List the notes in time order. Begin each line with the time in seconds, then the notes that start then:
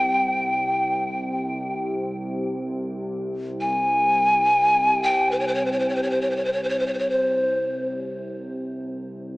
Already playing: C2 C3 G5
3.61 G#5
5.03 G5
5.31 C5
5.40 C#5
5.48 C5
5.54 C#5
5.65 C5
5.72 C#5
5.79 C5
5.89 C#5
5.95 C5
6.03 C#5
6.10 C5
6.21 C#5
6.30 C5
6.36 C#5
6.45 C5
6.53 C#5
6.63 C5
6.69 C#5
6.79 C5
6.87 C#5
6.94 C5
6.99 C#5
7.10 C5